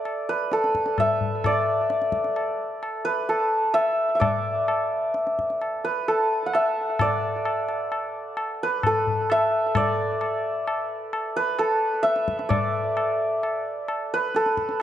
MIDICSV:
0, 0, Header, 1, 3, 480
1, 0, Start_track
1, 0, Tempo, 462963
1, 51, Time_signature, 3, 2, 24, 8
1, 7731, Tempo, 459067
1, 15431, End_track
2, 0, Start_track
2, 0, Title_t, "Santur"
2, 0, Program_c, 0, 15
2, 0, Note_on_c, 0, 69, 66
2, 0, Note_on_c, 0, 71, 78
2, 0, Note_on_c, 0, 74, 56
2, 0, Note_on_c, 0, 76, 84
2, 242, Note_off_c, 0, 71, 0
2, 301, Note_on_c, 0, 71, 75
2, 501, Note_off_c, 0, 76, 0
2, 543, Note_off_c, 0, 69, 0
2, 547, Note_on_c, 0, 69, 70
2, 1035, Note_on_c, 0, 76, 82
2, 1508, Note_off_c, 0, 74, 0
2, 1512, Note_on_c, 0, 74, 79
2, 3130, Note_off_c, 0, 71, 0
2, 3160, Note_on_c, 0, 71, 80
2, 3406, Note_off_c, 0, 69, 0
2, 3410, Note_on_c, 0, 69, 67
2, 3415, Note_off_c, 0, 76, 0
2, 3876, Note_on_c, 0, 76, 91
2, 4067, Note_off_c, 0, 74, 0
2, 4299, Note_off_c, 0, 76, 0
2, 4303, Note_on_c, 0, 76, 55
2, 4352, Note_on_c, 0, 74, 72
2, 5989, Note_off_c, 0, 71, 0
2, 6060, Note_on_c, 0, 71, 72
2, 6301, Note_off_c, 0, 69, 0
2, 6305, Note_on_c, 0, 69, 69
2, 6684, Note_off_c, 0, 76, 0
2, 6700, Note_on_c, 0, 78, 61
2, 6787, Note_on_c, 0, 76, 84
2, 6907, Note_off_c, 0, 74, 0
2, 7269, Note_on_c, 0, 74, 82
2, 8898, Note_off_c, 0, 71, 0
2, 8945, Note_off_c, 0, 78, 0
2, 8959, Note_on_c, 0, 71, 81
2, 9180, Note_off_c, 0, 76, 0
2, 9199, Note_off_c, 0, 69, 0
2, 9203, Note_on_c, 0, 69, 72
2, 9674, Note_on_c, 0, 76, 97
2, 9842, Note_off_c, 0, 74, 0
2, 10146, Note_on_c, 0, 74, 87
2, 11812, Note_off_c, 0, 71, 0
2, 11817, Note_on_c, 0, 71, 89
2, 12050, Note_off_c, 0, 69, 0
2, 12054, Note_on_c, 0, 69, 74
2, 12075, Note_off_c, 0, 76, 0
2, 12510, Note_on_c, 0, 76, 95
2, 12722, Note_off_c, 0, 74, 0
2, 12993, Note_on_c, 0, 74, 77
2, 14670, Note_off_c, 0, 71, 0
2, 14715, Note_on_c, 0, 71, 85
2, 14911, Note_off_c, 0, 76, 0
2, 14944, Note_off_c, 0, 69, 0
2, 14948, Note_on_c, 0, 69, 81
2, 15431, Note_off_c, 0, 69, 0
2, 15431, Note_off_c, 0, 71, 0
2, 15431, Note_off_c, 0, 74, 0
2, 15431, End_track
3, 0, Start_track
3, 0, Title_t, "Tabla"
3, 55, Note_on_c, 9, 60, 69
3, 159, Note_off_c, 9, 60, 0
3, 535, Note_on_c, 9, 62, 74
3, 639, Note_off_c, 9, 62, 0
3, 664, Note_on_c, 9, 62, 53
3, 768, Note_off_c, 9, 62, 0
3, 774, Note_on_c, 9, 37, 54
3, 878, Note_off_c, 9, 37, 0
3, 890, Note_on_c, 9, 62, 58
3, 994, Note_off_c, 9, 62, 0
3, 1015, Note_on_c, 9, 60, 71
3, 1015, Note_on_c, 9, 64, 57
3, 1118, Note_off_c, 9, 60, 0
3, 1118, Note_off_c, 9, 64, 0
3, 1253, Note_on_c, 9, 64, 46
3, 1357, Note_off_c, 9, 64, 0
3, 1496, Note_on_c, 9, 60, 91
3, 1496, Note_on_c, 9, 64, 80
3, 1599, Note_off_c, 9, 60, 0
3, 1599, Note_off_c, 9, 64, 0
3, 1970, Note_on_c, 9, 62, 75
3, 2073, Note_off_c, 9, 62, 0
3, 2091, Note_on_c, 9, 62, 53
3, 2194, Note_off_c, 9, 62, 0
3, 2201, Note_on_c, 9, 37, 51
3, 2304, Note_off_c, 9, 37, 0
3, 2326, Note_on_c, 9, 62, 55
3, 2430, Note_off_c, 9, 62, 0
3, 2450, Note_on_c, 9, 60, 69
3, 2553, Note_off_c, 9, 60, 0
3, 2931, Note_on_c, 9, 60, 74
3, 3034, Note_off_c, 9, 60, 0
3, 3417, Note_on_c, 9, 60, 71
3, 3521, Note_off_c, 9, 60, 0
3, 3884, Note_on_c, 9, 60, 70
3, 3988, Note_off_c, 9, 60, 0
3, 4369, Note_on_c, 9, 60, 88
3, 4369, Note_on_c, 9, 64, 83
3, 4473, Note_off_c, 9, 60, 0
3, 4473, Note_off_c, 9, 64, 0
3, 4854, Note_on_c, 9, 60, 75
3, 4958, Note_off_c, 9, 60, 0
3, 5332, Note_on_c, 9, 62, 65
3, 5436, Note_off_c, 9, 62, 0
3, 5462, Note_on_c, 9, 62, 53
3, 5566, Note_off_c, 9, 62, 0
3, 5586, Note_on_c, 9, 37, 50
3, 5690, Note_off_c, 9, 37, 0
3, 5703, Note_on_c, 9, 62, 56
3, 5807, Note_off_c, 9, 62, 0
3, 5822, Note_on_c, 9, 60, 66
3, 5925, Note_off_c, 9, 60, 0
3, 6307, Note_on_c, 9, 60, 69
3, 6411, Note_off_c, 9, 60, 0
3, 6775, Note_on_c, 9, 60, 70
3, 6879, Note_off_c, 9, 60, 0
3, 7251, Note_on_c, 9, 60, 93
3, 7251, Note_on_c, 9, 64, 82
3, 7355, Note_off_c, 9, 60, 0
3, 7355, Note_off_c, 9, 64, 0
3, 7728, Note_on_c, 9, 60, 76
3, 7833, Note_off_c, 9, 60, 0
3, 7970, Note_on_c, 9, 60, 62
3, 8075, Note_off_c, 9, 60, 0
3, 8213, Note_on_c, 9, 60, 66
3, 8317, Note_off_c, 9, 60, 0
3, 8685, Note_on_c, 9, 60, 72
3, 8789, Note_off_c, 9, 60, 0
3, 9171, Note_on_c, 9, 60, 80
3, 9171, Note_on_c, 9, 64, 73
3, 9275, Note_off_c, 9, 60, 0
3, 9275, Note_off_c, 9, 64, 0
3, 9419, Note_on_c, 9, 64, 51
3, 9524, Note_off_c, 9, 64, 0
3, 9656, Note_on_c, 9, 60, 75
3, 9761, Note_off_c, 9, 60, 0
3, 10129, Note_on_c, 9, 60, 104
3, 10129, Note_on_c, 9, 64, 88
3, 10234, Note_off_c, 9, 60, 0
3, 10234, Note_off_c, 9, 64, 0
3, 10610, Note_on_c, 9, 60, 80
3, 10715, Note_off_c, 9, 60, 0
3, 11096, Note_on_c, 9, 60, 79
3, 11200, Note_off_c, 9, 60, 0
3, 11573, Note_on_c, 9, 60, 74
3, 11677, Note_off_c, 9, 60, 0
3, 12049, Note_on_c, 9, 60, 80
3, 12153, Note_off_c, 9, 60, 0
3, 12527, Note_on_c, 9, 62, 75
3, 12632, Note_off_c, 9, 62, 0
3, 12647, Note_on_c, 9, 62, 57
3, 12752, Note_off_c, 9, 62, 0
3, 12773, Note_on_c, 9, 37, 56
3, 12877, Note_off_c, 9, 37, 0
3, 12891, Note_on_c, 9, 62, 60
3, 12995, Note_off_c, 9, 62, 0
3, 13009, Note_on_c, 9, 60, 92
3, 13009, Note_on_c, 9, 64, 86
3, 13113, Note_off_c, 9, 60, 0
3, 13113, Note_off_c, 9, 64, 0
3, 13494, Note_on_c, 9, 60, 75
3, 13598, Note_off_c, 9, 60, 0
3, 13980, Note_on_c, 9, 60, 73
3, 14084, Note_off_c, 9, 60, 0
3, 14452, Note_on_c, 9, 60, 72
3, 14556, Note_off_c, 9, 60, 0
3, 14935, Note_on_c, 9, 62, 75
3, 15039, Note_off_c, 9, 62, 0
3, 15054, Note_on_c, 9, 62, 54
3, 15159, Note_off_c, 9, 62, 0
3, 15173, Note_on_c, 9, 37, 57
3, 15278, Note_off_c, 9, 37, 0
3, 15292, Note_on_c, 9, 62, 58
3, 15397, Note_off_c, 9, 62, 0
3, 15431, End_track
0, 0, End_of_file